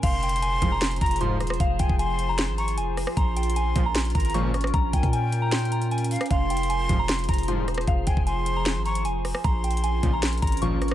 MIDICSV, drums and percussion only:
0, 0, Header, 1, 2, 480
1, 0, Start_track
1, 0, Key_signature, -4, "minor"
1, 0, Tempo, 392157
1, 39, Time_signature, 4, 2, 24, 8
1, 13397, End_track
2, 0, Start_track
2, 0, Title_t, "Drums"
2, 39, Note_on_c, 9, 36, 118
2, 39, Note_on_c, 9, 42, 74
2, 39, Note_on_c, 9, 49, 97
2, 161, Note_off_c, 9, 36, 0
2, 161, Note_off_c, 9, 42, 0
2, 161, Note_off_c, 9, 49, 0
2, 279, Note_on_c, 9, 42, 77
2, 359, Note_off_c, 9, 42, 0
2, 359, Note_on_c, 9, 42, 77
2, 439, Note_off_c, 9, 42, 0
2, 439, Note_on_c, 9, 42, 81
2, 520, Note_off_c, 9, 42, 0
2, 520, Note_on_c, 9, 42, 78
2, 642, Note_off_c, 9, 42, 0
2, 758, Note_on_c, 9, 36, 103
2, 758, Note_on_c, 9, 42, 85
2, 880, Note_off_c, 9, 42, 0
2, 881, Note_off_c, 9, 36, 0
2, 999, Note_on_c, 9, 42, 78
2, 1000, Note_on_c, 9, 38, 116
2, 1059, Note_off_c, 9, 42, 0
2, 1059, Note_on_c, 9, 42, 69
2, 1119, Note_off_c, 9, 42, 0
2, 1119, Note_on_c, 9, 42, 58
2, 1122, Note_off_c, 9, 38, 0
2, 1179, Note_off_c, 9, 42, 0
2, 1179, Note_on_c, 9, 42, 46
2, 1239, Note_off_c, 9, 42, 0
2, 1239, Note_on_c, 9, 42, 69
2, 1240, Note_on_c, 9, 36, 109
2, 1299, Note_off_c, 9, 42, 0
2, 1299, Note_on_c, 9, 42, 69
2, 1359, Note_off_c, 9, 42, 0
2, 1359, Note_on_c, 9, 42, 68
2, 1363, Note_off_c, 9, 36, 0
2, 1419, Note_off_c, 9, 42, 0
2, 1419, Note_on_c, 9, 42, 69
2, 1477, Note_off_c, 9, 42, 0
2, 1477, Note_on_c, 9, 42, 72
2, 1599, Note_off_c, 9, 42, 0
2, 1719, Note_on_c, 9, 37, 70
2, 1719, Note_on_c, 9, 42, 53
2, 1799, Note_off_c, 9, 42, 0
2, 1799, Note_on_c, 9, 42, 53
2, 1838, Note_off_c, 9, 37, 0
2, 1838, Note_on_c, 9, 37, 106
2, 1879, Note_off_c, 9, 42, 0
2, 1879, Note_on_c, 9, 42, 53
2, 1959, Note_off_c, 9, 42, 0
2, 1959, Note_on_c, 9, 36, 121
2, 1959, Note_on_c, 9, 42, 77
2, 1961, Note_off_c, 9, 37, 0
2, 2081, Note_off_c, 9, 42, 0
2, 2082, Note_off_c, 9, 36, 0
2, 2195, Note_on_c, 9, 42, 88
2, 2199, Note_on_c, 9, 36, 99
2, 2317, Note_off_c, 9, 42, 0
2, 2319, Note_off_c, 9, 36, 0
2, 2319, Note_on_c, 9, 36, 105
2, 2440, Note_on_c, 9, 42, 79
2, 2441, Note_off_c, 9, 36, 0
2, 2562, Note_off_c, 9, 42, 0
2, 2678, Note_on_c, 9, 42, 85
2, 2800, Note_off_c, 9, 42, 0
2, 2917, Note_on_c, 9, 42, 79
2, 2920, Note_on_c, 9, 38, 111
2, 3040, Note_off_c, 9, 42, 0
2, 3043, Note_off_c, 9, 38, 0
2, 3159, Note_on_c, 9, 42, 50
2, 3279, Note_off_c, 9, 42, 0
2, 3279, Note_on_c, 9, 42, 85
2, 3397, Note_off_c, 9, 42, 0
2, 3397, Note_on_c, 9, 42, 76
2, 3520, Note_off_c, 9, 42, 0
2, 3640, Note_on_c, 9, 37, 75
2, 3640, Note_on_c, 9, 46, 65
2, 3759, Note_off_c, 9, 37, 0
2, 3759, Note_on_c, 9, 37, 106
2, 3762, Note_off_c, 9, 46, 0
2, 3879, Note_on_c, 9, 36, 116
2, 3879, Note_on_c, 9, 42, 74
2, 3881, Note_off_c, 9, 37, 0
2, 4001, Note_off_c, 9, 36, 0
2, 4001, Note_off_c, 9, 42, 0
2, 4119, Note_on_c, 9, 42, 78
2, 4199, Note_off_c, 9, 42, 0
2, 4199, Note_on_c, 9, 42, 78
2, 4279, Note_off_c, 9, 42, 0
2, 4279, Note_on_c, 9, 42, 79
2, 4360, Note_off_c, 9, 42, 0
2, 4360, Note_on_c, 9, 42, 79
2, 4482, Note_off_c, 9, 42, 0
2, 4597, Note_on_c, 9, 42, 84
2, 4598, Note_on_c, 9, 36, 102
2, 4720, Note_off_c, 9, 42, 0
2, 4721, Note_off_c, 9, 36, 0
2, 4839, Note_on_c, 9, 42, 77
2, 4840, Note_on_c, 9, 38, 111
2, 4899, Note_off_c, 9, 42, 0
2, 4899, Note_on_c, 9, 42, 65
2, 4959, Note_off_c, 9, 42, 0
2, 4959, Note_on_c, 9, 42, 59
2, 4962, Note_off_c, 9, 38, 0
2, 5019, Note_off_c, 9, 42, 0
2, 5019, Note_on_c, 9, 42, 47
2, 5079, Note_off_c, 9, 42, 0
2, 5079, Note_on_c, 9, 42, 69
2, 5080, Note_on_c, 9, 36, 107
2, 5139, Note_off_c, 9, 42, 0
2, 5139, Note_on_c, 9, 42, 72
2, 5199, Note_off_c, 9, 42, 0
2, 5199, Note_on_c, 9, 42, 68
2, 5202, Note_off_c, 9, 36, 0
2, 5259, Note_off_c, 9, 42, 0
2, 5259, Note_on_c, 9, 42, 70
2, 5317, Note_off_c, 9, 42, 0
2, 5317, Note_on_c, 9, 42, 74
2, 5439, Note_off_c, 9, 42, 0
2, 5559, Note_on_c, 9, 37, 73
2, 5559, Note_on_c, 9, 42, 52
2, 5639, Note_off_c, 9, 42, 0
2, 5639, Note_on_c, 9, 42, 53
2, 5679, Note_off_c, 9, 37, 0
2, 5679, Note_on_c, 9, 37, 105
2, 5719, Note_off_c, 9, 42, 0
2, 5719, Note_on_c, 9, 42, 54
2, 5798, Note_off_c, 9, 42, 0
2, 5798, Note_on_c, 9, 42, 74
2, 5799, Note_on_c, 9, 36, 125
2, 5801, Note_off_c, 9, 37, 0
2, 5921, Note_off_c, 9, 36, 0
2, 5921, Note_off_c, 9, 42, 0
2, 6039, Note_on_c, 9, 36, 100
2, 6039, Note_on_c, 9, 42, 93
2, 6158, Note_off_c, 9, 36, 0
2, 6158, Note_on_c, 9, 36, 103
2, 6159, Note_off_c, 9, 42, 0
2, 6159, Note_on_c, 9, 42, 57
2, 6280, Note_off_c, 9, 42, 0
2, 6280, Note_on_c, 9, 42, 80
2, 6281, Note_off_c, 9, 36, 0
2, 6402, Note_off_c, 9, 42, 0
2, 6517, Note_on_c, 9, 42, 86
2, 6640, Note_off_c, 9, 42, 0
2, 6759, Note_on_c, 9, 38, 109
2, 6759, Note_on_c, 9, 42, 78
2, 6839, Note_off_c, 9, 42, 0
2, 6839, Note_on_c, 9, 42, 63
2, 6882, Note_off_c, 9, 38, 0
2, 6919, Note_off_c, 9, 42, 0
2, 6919, Note_on_c, 9, 42, 46
2, 6999, Note_off_c, 9, 42, 0
2, 6999, Note_on_c, 9, 42, 68
2, 7119, Note_off_c, 9, 42, 0
2, 7119, Note_on_c, 9, 42, 69
2, 7239, Note_off_c, 9, 42, 0
2, 7239, Note_on_c, 9, 42, 47
2, 7318, Note_off_c, 9, 42, 0
2, 7318, Note_on_c, 9, 42, 62
2, 7399, Note_off_c, 9, 42, 0
2, 7399, Note_on_c, 9, 42, 78
2, 7479, Note_off_c, 9, 42, 0
2, 7479, Note_on_c, 9, 42, 52
2, 7479, Note_on_c, 9, 46, 66
2, 7539, Note_off_c, 9, 42, 0
2, 7539, Note_on_c, 9, 42, 53
2, 7598, Note_off_c, 9, 42, 0
2, 7598, Note_on_c, 9, 37, 108
2, 7598, Note_on_c, 9, 42, 54
2, 7601, Note_off_c, 9, 46, 0
2, 7658, Note_off_c, 9, 42, 0
2, 7658, Note_on_c, 9, 42, 52
2, 7718, Note_off_c, 9, 42, 0
2, 7718, Note_on_c, 9, 42, 75
2, 7719, Note_on_c, 9, 36, 120
2, 7720, Note_off_c, 9, 37, 0
2, 7840, Note_off_c, 9, 42, 0
2, 7841, Note_off_c, 9, 36, 0
2, 7958, Note_on_c, 9, 42, 77
2, 8038, Note_off_c, 9, 42, 0
2, 8038, Note_on_c, 9, 42, 75
2, 8119, Note_off_c, 9, 42, 0
2, 8119, Note_on_c, 9, 42, 79
2, 8199, Note_off_c, 9, 42, 0
2, 8199, Note_on_c, 9, 42, 80
2, 8322, Note_off_c, 9, 42, 0
2, 8437, Note_on_c, 9, 42, 86
2, 8438, Note_on_c, 9, 36, 103
2, 8559, Note_off_c, 9, 42, 0
2, 8560, Note_off_c, 9, 36, 0
2, 8679, Note_on_c, 9, 38, 111
2, 8679, Note_on_c, 9, 42, 78
2, 8738, Note_off_c, 9, 42, 0
2, 8738, Note_on_c, 9, 42, 66
2, 8799, Note_off_c, 9, 42, 0
2, 8799, Note_on_c, 9, 42, 58
2, 8802, Note_off_c, 9, 38, 0
2, 8859, Note_off_c, 9, 42, 0
2, 8859, Note_on_c, 9, 42, 49
2, 8919, Note_off_c, 9, 42, 0
2, 8919, Note_on_c, 9, 42, 69
2, 8920, Note_on_c, 9, 36, 107
2, 8979, Note_off_c, 9, 42, 0
2, 8979, Note_on_c, 9, 42, 67
2, 9039, Note_off_c, 9, 42, 0
2, 9039, Note_on_c, 9, 42, 69
2, 9042, Note_off_c, 9, 36, 0
2, 9099, Note_off_c, 9, 42, 0
2, 9099, Note_on_c, 9, 42, 67
2, 9157, Note_off_c, 9, 42, 0
2, 9157, Note_on_c, 9, 42, 71
2, 9279, Note_off_c, 9, 42, 0
2, 9399, Note_on_c, 9, 37, 73
2, 9399, Note_on_c, 9, 42, 53
2, 9479, Note_off_c, 9, 42, 0
2, 9479, Note_on_c, 9, 42, 53
2, 9518, Note_off_c, 9, 37, 0
2, 9518, Note_on_c, 9, 37, 108
2, 9559, Note_off_c, 9, 42, 0
2, 9559, Note_on_c, 9, 42, 52
2, 9639, Note_off_c, 9, 42, 0
2, 9639, Note_on_c, 9, 36, 121
2, 9639, Note_on_c, 9, 42, 74
2, 9641, Note_off_c, 9, 37, 0
2, 9761, Note_off_c, 9, 42, 0
2, 9762, Note_off_c, 9, 36, 0
2, 9875, Note_on_c, 9, 42, 89
2, 9879, Note_on_c, 9, 36, 101
2, 9997, Note_off_c, 9, 42, 0
2, 9999, Note_off_c, 9, 36, 0
2, 9999, Note_on_c, 9, 36, 102
2, 10120, Note_on_c, 9, 42, 81
2, 10121, Note_off_c, 9, 36, 0
2, 10242, Note_off_c, 9, 42, 0
2, 10357, Note_on_c, 9, 42, 84
2, 10480, Note_off_c, 9, 42, 0
2, 10597, Note_on_c, 9, 42, 78
2, 10600, Note_on_c, 9, 38, 114
2, 10719, Note_off_c, 9, 42, 0
2, 10722, Note_off_c, 9, 38, 0
2, 10839, Note_on_c, 9, 42, 49
2, 10959, Note_off_c, 9, 42, 0
2, 10959, Note_on_c, 9, 42, 86
2, 11077, Note_off_c, 9, 42, 0
2, 11077, Note_on_c, 9, 42, 75
2, 11199, Note_off_c, 9, 42, 0
2, 11319, Note_on_c, 9, 37, 76
2, 11320, Note_on_c, 9, 46, 68
2, 11439, Note_off_c, 9, 37, 0
2, 11439, Note_on_c, 9, 37, 106
2, 11442, Note_off_c, 9, 46, 0
2, 11559, Note_on_c, 9, 36, 122
2, 11559, Note_on_c, 9, 42, 76
2, 11562, Note_off_c, 9, 37, 0
2, 11682, Note_off_c, 9, 36, 0
2, 11682, Note_off_c, 9, 42, 0
2, 11799, Note_on_c, 9, 42, 78
2, 11880, Note_off_c, 9, 42, 0
2, 11880, Note_on_c, 9, 42, 77
2, 11959, Note_off_c, 9, 42, 0
2, 11959, Note_on_c, 9, 42, 80
2, 12040, Note_off_c, 9, 42, 0
2, 12040, Note_on_c, 9, 42, 80
2, 12163, Note_off_c, 9, 42, 0
2, 12278, Note_on_c, 9, 42, 86
2, 12279, Note_on_c, 9, 36, 104
2, 12400, Note_off_c, 9, 42, 0
2, 12401, Note_off_c, 9, 36, 0
2, 12519, Note_on_c, 9, 42, 79
2, 12520, Note_on_c, 9, 38, 113
2, 12579, Note_off_c, 9, 42, 0
2, 12579, Note_on_c, 9, 42, 65
2, 12639, Note_off_c, 9, 42, 0
2, 12639, Note_on_c, 9, 42, 59
2, 12643, Note_off_c, 9, 38, 0
2, 12699, Note_off_c, 9, 42, 0
2, 12699, Note_on_c, 9, 42, 47
2, 12759, Note_off_c, 9, 42, 0
2, 12759, Note_on_c, 9, 42, 70
2, 12760, Note_on_c, 9, 36, 109
2, 12819, Note_off_c, 9, 42, 0
2, 12819, Note_on_c, 9, 42, 71
2, 12879, Note_off_c, 9, 42, 0
2, 12879, Note_on_c, 9, 42, 68
2, 12883, Note_off_c, 9, 36, 0
2, 12939, Note_off_c, 9, 42, 0
2, 12939, Note_on_c, 9, 42, 72
2, 12997, Note_off_c, 9, 42, 0
2, 12997, Note_on_c, 9, 42, 75
2, 13119, Note_off_c, 9, 42, 0
2, 13239, Note_on_c, 9, 37, 73
2, 13239, Note_on_c, 9, 42, 52
2, 13319, Note_off_c, 9, 42, 0
2, 13319, Note_on_c, 9, 42, 52
2, 13359, Note_off_c, 9, 37, 0
2, 13359, Note_on_c, 9, 37, 103
2, 13397, Note_off_c, 9, 37, 0
2, 13397, Note_off_c, 9, 42, 0
2, 13397, End_track
0, 0, End_of_file